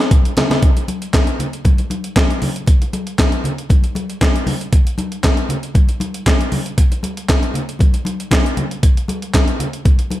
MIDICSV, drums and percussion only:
0, 0, Header, 1, 2, 480
1, 0, Start_track
1, 0, Tempo, 512821
1, 585, Time_signature, 4, 2, 24, 8
1, 9547, End_track
2, 0, Start_track
2, 0, Title_t, "Drums"
2, 0, Note_on_c, 9, 38, 88
2, 91, Note_off_c, 9, 38, 0
2, 104, Note_on_c, 9, 36, 127
2, 104, Note_on_c, 9, 62, 35
2, 104, Note_on_c, 9, 63, 69
2, 105, Note_on_c, 9, 42, 99
2, 198, Note_off_c, 9, 36, 0
2, 198, Note_off_c, 9, 42, 0
2, 198, Note_off_c, 9, 62, 0
2, 198, Note_off_c, 9, 63, 0
2, 237, Note_on_c, 9, 42, 54
2, 331, Note_off_c, 9, 42, 0
2, 344, Note_on_c, 9, 42, 75
2, 346, Note_on_c, 9, 63, 70
2, 346, Note_on_c, 9, 64, 71
2, 352, Note_on_c, 9, 38, 112
2, 437, Note_off_c, 9, 42, 0
2, 439, Note_off_c, 9, 63, 0
2, 439, Note_off_c, 9, 64, 0
2, 445, Note_off_c, 9, 38, 0
2, 467, Note_on_c, 9, 64, 67
2, 476, Note_on_c, 9, 42, 51
2, 479, Note_on_c, 9, 38, 96
2, 560, Note_off_c, 9, 64, 0
2, 570, Note_off_c, 9, 42, 0
2, 572, Note_off_c, 9, 38, 0
2, 585, Note_on_c, 9, 36, 127
2, 585, Note_on_c, 9, 42, 95
2, 679, Note_off_c, 9, 36, 0
2, 679, Note_off_c, 9, 42, 0
2, 716, Note_on_c, 9, 62, 34
2, 718, Note_on_c, 9, 42, 58
2, 809, Note_off_c, 9, 62, 0
2, 811, Note_off_c, 9, 42, 0
2, 824, Note_on_c, 9, 63, 71
2, 827, Note_on_c, 9, 42, 68
2, 917, Note_off_c, 9, 63, 0
2, 921, Note_off_c, 9, 42, 0
2, 953, Note_on_c, 9, 42, 55
2, 1047, Note_off_c, 9, 42, 0
2, 1063, Note_on_c, 9, 62, 31
2, 1063, Note_on_c, 9, 63, 74
2, 1065, Note_on_c, 9, 36, 111
2, 1067, Note_on_c, 9, 42, 108
2, 1068, Note_on_c, 9, 39, 80
2, 1070, Note_on_c, 9, 38, 98
2, 1157, Note_off_c, 9, 62, 0
2, 1157, Note_off_c, 9, 63, 0
2, 1158, Note_off_c, 9, 36, 0
2, 1161, Note_off_c, 9, 39, 0
2, 1161, Note_off_c, 9, 42, 0
2, 1164, Note_off_c, 9, 38, 0
2, 1189, Note_on_c, 9, 42, 50
2, 1193, Note_on_c, 9, 62, 35
2, 1283, Note_off_c, 9, 42, 0
2, 1286, Note_off_c, 9, 62, 0
2, 1303, Note_on_c, 9, 64, 62
2, 1310, Note_on_c, 9, 42, 74
2, 1397, Note_off_c, 9, 64, 0
2, 1404, Note_off_c, 9, 42, 0
2, 1434, Note_on_c, 9, 42, 50
2, 1528, Note_off_c, 9, 42, 0
2, 1541, Note_on_c, 9, 62, 36
2, 1541, Note_on_c, 9, 63, 60
2, 1544, Note_on_c, 9, 36, 106
2, 1546, Note_on_c, 9, 42, 80
2, 1634, Note_off_c, 9, 62, 0
2, 1634, Note_off_c, 9, 63, 0
2, 1638, Note_off_c, 9, 36, 0
2, 1640, Note_off_c, 9, 42, 0
2, 1669, Note_on_c, 9, 42, 47
2, 1676, Note_on_c, 9, 62, 31
2, 1763, Note_off_c, 9, 42, 0
2, 1770, Note_off_c, 9, 62, 0
2, 1780, Note_on_c, 9, 63, 68
2, 1786, Note_on_c, 9, 42, 68
2, 1873, Note_off_c, 9, 63, 0
2, 1880, Note_off_c, 9, 42, 0
2, 1910, Note_on_c, 9, 42, 53
2, 2004, Note_off_c, 9, 42, 0
2, 2022, Note_on_c, 9, 62, 31
2, 2022, Note_on_c, 9, 63, 72
2, 2023, Note_on_c, 9, 36, 103
2, 2024, Note_on_c, 9, 42, 77
2, 2028, Note_on_c, 9, 39, 95
2, 2030, Note_on_c, 9, 38, 112
2, 2115, Note_off_c, 9, 62, 0
2, 2115, Note_off_c, 9, 63, 0
2, 2117, Note_off_c, 9, 36, 0
2, 2117, Note_off_c, 9, 42, 0
2, 2122, Note_off_c, 9, 39, 0
2, 2124, Note_off_c, 9, 38, 0
2, 2157, Note_on_c, 9, 42, 52
2, 2251, Note_off_c, 9, 42, 0
2, 2263, Note_on_c, 9, 46, 67
2, 2265, Note_on_c, 9, 63, 64
2, 2265, Note_on_c, 9, 64, 70
2, 2356, Note_off_c, 9, 46, 0
2, 2358, Note_off_c, 9, 63, 0
2, 2358, Note_off_c, 9, 64, 0
2, 2396, Note_on_c, 9, 42, 53
2, 2490, Note_off_c, 9, 42, 0
2, 2493, Note_on_c, 9, 62, 35
2, 2503, Note_on_c, 9, 42, 106
2, 2504, Note_on_c, 9, 36, 117
2, 2587, Note_off_c, 9, 62, 0
2, 2597, Note_off_c, 9, 42, 0
2, 2598, Note_off_c, 9, 36, 0
2, 2637, Note_on_c, 9, 42, 52
2, 2638, Note_on_c, 9, 62, 38
2, 2730, Note_off_c, 9, 42, 0
2, 2731, Note_off_c, 9, 62, 0
2, 2744, Note_on_c, 9, 63, 68
2, 2746, Note_on_c, 9, 42, 66
2, 2838, Note_off_c, 9, 63, 0
2, 2840, Note_off_c, 9, 42, 0
2, 2871, Note_on_c, 9, 42, 49
2, 2965, Note_off_c, 9, 42, 0
2, 2982, Note_on_c, 9, 63, 70
2, 2983, Note_on_c, 9, 36, 107
2, 2987, Note_on_c, 9, 42, 96
2, 2988, Note_on_c, 9, 39, 84
2, 2990, Note_on_c, 9, 38, 96
2, 3076, Note_off_c, 9, 63, 0
2, 3077, Note_off_c, 9, 36, 0
2, 3080, Note_off_c, 9, 42, 0
2, 3081, Note_off_c, 9, 39, 0
2, 3083, Note_off_c, 9, 38, 0
2, 3109, Note_on_c, 9, 42, 51
2, 3202, Note_off_c, 9, 42, 0
2, 3220, Note_on_c, 9, 64, 66
2, 3230, Note_on_c, 9, 42, 68
2, 3313, Note_off_c, 9, 64, 0
2, 3324, Note_off_c, 9, 42, 0
2, 3355, Note_on_c, 9, 42, 49
2, 3448, Note_off_c, 9, 42, 0
2, 3459, Note_on_c, 9, 62, 34
2, 3459, Note_on_c, 9, 63, 56
2, 3464, Note_on_c, 9, 36, 126
2, 3468, Note_on_c, 9, 42, 87
2, 3552, Note_off_c, 9, 62, 0
2, 3552, Note_off_c, 9, 63, 0
2, 3558, Note_off_c, 9, 36, 0
2, 3561, Note_off_c, 9, 42, 0
2, 3591, Note_on_c, 9, 42, 51
2, 3595, Note_on_c, 9, 62, 30
2, 3684, Note_off_c, 9, 42, 0
2, 3689, Note_off_c, 9, 62, 0
2, 3698, Note_on_c, 9, 63, 79
2, 3708, Note_on_c, 9, 42, 62
2, 3792, Note_off_c, 9, 63, 0
2, 3802, Note_off_c, 9, 42, 0
2, 3834, Note_on_c, 9, 42, 48
2, 3927, Note_off_c, 9, 42, 0
2, 3940, Note_on_c, 9, 63, 65
2, 3943, Note_on_c, 9, 36, 112
2, 3946, Note_on_c, 9, 42, 85
2, 3950, Note_on_c, 9, 39, 97
2, 3953, Note_on_c, 9, 38, 118
2, 4034, Note_off_c, 9, 63, 0
2, 4037, Note_off_c, 9, 36, 0
2, 4039, Note_off_c, 9, 42, 0
2, 4044, Note_off_c, 9, 39, 0
2, 4046, Note_off_c, 9, 38, 0
2, 4064, Note_on_c, 9, 62, 35
2, 4078, Note_on_c, 9, 42, 57
2, 4158, Note_off_c, 9, 62, 0
2, 4171, Note_off_c, 9, 42, 0
2, 4180, Note_on_c, 9, 63, 72
2, 4180, Note_on_c, 9, 64, 70
2, 4183, Note_on_c, 9, 46, 71
2, 4274, Note_off_c, 9, 63, 0
2, 4274, Note_off_c, 9, 64, 0
2, 4277, Note_off_c, 9, 46, 0
2, 4316, Note_on_c, 9, 42, 53
2, 4410, Note_off_c, 9, 42, 0
2, 4423, Note_on_c, 9, 42, 112
2, 4424, Note_on_c, 9, 36, 112
2, 4517, Note_off_c, 9, 36, 0
2, 4517, Note_off_c, 9, 42, 0
2, 4556, Note_on_c, 9, 42, 59
2, 4650, Note_off_c, 9, 42, 0
2, 4659, Note_on_c, 9, 63, 80
2, 4666, Note_on_c, 9, 42, 65
2, 4752, Note_off_c, 9, 63, 0
2, 4759, Note_off_c, 9, 42, 0
2, 4791, Note_on_c, 9, 42, 48
2, 4884, Note_off_c, 9, 42, 0
2, 4899, Note_on_c, 9, 62, 32
2, 4899, Note_on_c, 9, 63, 64
2, 4903, Note_on_c, 9, 36, 106
2, 4905, Note_on_c, 9, 39, 80
2, 4905, Note_on_c, 9, 42, 105
2, 4907, Note_on_c, 9, 38, 96
2, 4992, Note_off_c, 9, 62, 0
2, 4992, Note_off_c, 9, 63, 0
2, 4996, Note_off_c, 9, 36, 0
2, 4998, Note_off_c, 9, 42, 0
2, 4999, Note_off_c, 9, 39, 0
2, 5001, Note_off_c, 9, 38, 0
2, 5028, Note_on_c, 9, 42, 46
2, 5121, Note_off_c, 9, 42, 0
2, 5138, Note_on_c, 9, 64, 65
2, 5147, Note_on_c, 9, 42, 84
2, 5232, Note_off_c, 9, 64, 0
2, 5241, Note_off_c, 9, 42, 0
2, 5270, Note_on_c, 9, 42, 51
2, 5363, Note_off_c, 9, 42, 0
2, 5376, Note_on_c, 9, 63, 58
2, 5383, Note_on_c, 9, 36, 124
2, 5384, Note_on_c, 9, 42, 86
2, 5470, Note_off_c, 9, 63, 0
2, 5476, Note_off_c, 9, 36, 0
2, 5477, Note_off_c, 9, 42, 0
2, 5509, Note_on_c, 9, 42, 54
2, 5512, Note_on_c, 9, 62, 34
2, 5603, Note_off_c, 9, 42, 0
2, 5606, Note_off_c, 9, 62, 0
2, 5617, Note_on_c, 9, 63, 78
2, 5625, Note_on_c, 9, 42, 73
2, 5710, Note_off_c, 9, 63, 0
2, 5719, Note_off_c, 9, 42, 0
2, 5750, Note_on_c, 9, 42, 60
2, 5844, Note_off_c, 9, 42, 0
2, 5859, Note_on_c, 9, 62, 34
2, 5859, Note_on_c, 9, 63, 71
2, 5862, Note_on_c, 9, 36, 103
2, 5864, Note_on_c, 9, 42, 88
2, 5869, Note_on_c, 9, 39, 100
2, 5871, Note_on_c, 9, 38, 105
2, 5953, Note_off_c, 9, 62, 0
2, 5953, Note_off_c, 9, 63, 0
2, 5956, Note_off_c, 9, 36, 0
2, 5958, Note_off_c, 9, 42, 0
2, 5962, Note_off_c, 9, 39, 0
2, 5965, Note_off_c, 9, 38, 0
2, 5983, Note_on_c, 9, 62, 34
2, 5996, Note_on_c, 9, 42, 53
2, 6076, Note_off_c, 9, 62, 0
2, 6090, Note_off_c, 9, 42, 0
2, 6101, Note_on_c, 9, 46, 66
2, 6103, Note_on_c, 9, 63, 73
2, 6103, Note_on_c, 9, 64, 68
2, 6195, Note_off_c, 9, 46, 0
2, 6196, Note_off_c, 9, 63, 0
2, 6196, Note_off_c, 9, 64, 0
2, 6233, Note_on_c, 9, 42, 52
2, 6327, Note_off_c, 9, 42, 0
2, 6344, Note_on_c, 9, 36, 107
2, 6344, Note_on_c, 9, 42, 118
2, 6437, Note_off_c, 9, 36, 0
2, 6438, Note_off_c, 9, 42, 0
2, 6473, Note_on_c, 9, 62, 37
2, 6475, Note_on_c, 9, 42, 55
2, 6567, Note_off_c, 9, 62, 0
2, 6569, Note_off_c, 9, 42, 0
2, 6579, Note_on_c, 9, 63, 76
2, 6588, Note_on_c, 9, 42, 73
2, 6672, Note_off_c, 9, 63, 0
2, 6681, Note_off_c, 9, 42, 0
2, 6713, Note_on_c, 9, 42, 56
2, 6807, Note_off_c, 9, 42, 0
2, 6820, Note_on_c, 9, 62, 31
2, 6820, Note_on_c, 9, 63, 68
2, 6824, Note_on_c, 9, 36, 110
2, 6827, Note_on_c, 9, 42, 95
2, 6828, Note_on_c, 9, 39, 80
2, 6830, Note_on_c, 9, 38, 94
2, 6913, Note_off_c, 9, 62, 0
2, 6913, Note_off_c, 9, 63, 0
2, 6918, Note_off_c, 9, 36, 0
2, 6920, Note_off_c, 9, 42, 0
2, 6921, Note_off_c, 9, 39, 0
2, 6923, Note_off_c, 9, 38, 0
2, 6948, Note_on_c, 9, 62, 37
2, 6952, Note_on_c, 9, 42, 52
2, 7041, Note_off_c, 9, 62, 0
2, 7046, Note_off_c, 9, 42, 0
2, 7057, Note_on_c, 9, 64, 66
2, 7070, Note_on_c, 9, 42, 72
2, 7151, Note_off_c, 9, 64, 0
2, 7164, Note_off_c, 9, 42, 0
2, 7196, Note_on_c, 9, 42, 50
2, 7290, Note_off_c, 9, 42, 0
2, 7293, Note_on_c, 9, 63, 61
2, 7305, Note_on_c, 9, 36, 110
2, 7308, Note_on_c, 9, 42, 85
2, 7387, Note_off_c, 9, 63, 0
2, 7398, Note_off_c, 9, 36, 0
2, 7402, Note_off_c, 9, 42, 0
2, 7428, Note_on_c, 9, 62, 32
2, 7430, Note_on_c, 9, 42, 59
2, 7522, Note_off_c, 9, 62, 0
2, 7524, Note_off_c, 9, 42, 0
2, 7535, Note_on_c, 9, 63, 78
2, 7549, Note_on_c, 9, 42, 76
2, 7628, Note_off_c, 9, 63, 0
2, 7643, Note_off_c, 9, 42, 0
2, 7675, Note_on_c, 9, 42, 57
2, 7768, Note_off_c, 9, 42, 0
2, 7777, Note_on_c, 9, 62, 30
2, 7777, Note_on_c, 9, 63, 78
2, 7784, Note_on_c, 9, 36, 102
2, 7786, Note_on_c, 9, 42, 94
2, 7791, Note_on_c, 9, 39, 107
2, 7793, Note_on_c, 9, 38, 110
2, 7871, Note_off_c, 9, 62, 0
2, 7871, Note_off_c, 9, 63, 0
2, 7878, Note_off_c, 9, 36, 0
2, 7879, Note_off_c, 9, 42, 0
2, 7884, Note_off_c, 9, 39, 0
2, 7886, Note_off_c, 9, 38, 0
2, 7903, Note_on_c, 9, 62, 38
2, 7920, Note_on_c, 9, 42, 53
2, 7997, Note_off_c, 9, 62, 0
2, 8014, Note_off_c, 9, 42, 0
2, 8022, Note_on_c, 9, 63, 71
2, 8022, Note_on_c, 9, 64, 66
2, 8024, Note_on_c, 9, 42, 63
2, 8115, Note_off_c, 9, 63, 0
2, 8115, Note_off_c, 9, 64, 0
2, 8117, Note_off_c, 9, 42, 0
2, 8155, Note_on_c, 9, 42, 51
2, 8249, Note_off_c, 9, 42, 0
2, 8265, Note_on_c, 9, 36, 108
2, 8266, Note_on_c, 9, 42, 117
2, 8359, Note_off_c, 9, 36, 0
2, 8360, Note_off_c, 9, 42, 0
2, 8399, Note_on_c, 9, 42, 54
2, 8493, Note_off_c, 9, 42, 0
2, 8501, Note_on_c, 9, 63, 81
2, 8511, Note_on_c, 9, 42, 67
2, 8595, Note_off_c, 9, 63, 0
2, 8604, Note_off_c, 9, 42, 0
2, 8633, Note_on_c, 9, 42, 52
2, 8727, Note_off_c, 9, 42, 0
2, 8742, Note_on_c, 9, 63, 74
2, 8744, Note_on_c, 9, 36, 108
2, 8746, Note_on_c, 9, 42, 108
2, 8747, Note_on_c, 9, 39, 78
2, 8749, Note_on_c, 9, 38, 95
2, 8835, Note_off_c, 9, 63, 0
2, 8838, Note_off_c, 9, 36, 0
2, 8840, Note_off_c, 9, 39, 0
2, 8840, Note_off_c, 9, 42, 0
2, 8842, Note_off_c, 9, 38, 0
2, 8869, Note_on_c, 9, 42, 52
2, 8871, Note_on_c, 9, 62, 36
2, 8963, Note_off_c, 9, 42, 0
2, 8965, Note_off_c, 9, 62, 0
2, 8982, Note_on_c, 9, 64, 63
2, 8987, Note_on_c, 9, 42, 84
2, 9075, Note_off_c, 9, 64, 0
2, 9081, Note_off_c, 9, 42, 0
2, 9111, Note_on_c, 9, 42, 51
2, 9204, Note_off_c, 9, 42, 0
2, 9219, Note_on_c, 9, 63, 57
2, 9224, Note_on_c, 9, 36, 118
2, 9224, Note_on_c, 9, 42, 80
2, 9312, Note_off_c, 9, 63, 0
2, 9317, Note_off_c, 9, 36, 0
2, 9318, Note_off_c, 9, 42, 0
2, 9348, Note_on_c, 9, 42, 57
2, 9352, Note_on_c, 9, 62, 31
2, 9442, Note_off_c, 9, 42, 0
2, 9445, Note_off_c, 9, 62, 0
2, 9458, Note_on_c, 9, 63, 77
2, 9467, Note_on_c, 9, 42, 64
2, 9547, Note_off_c, 9, 42, 0
2, 9547, Note_off_c, 9, 63, 0
2, 9547, End_track
0, 0, End_of_file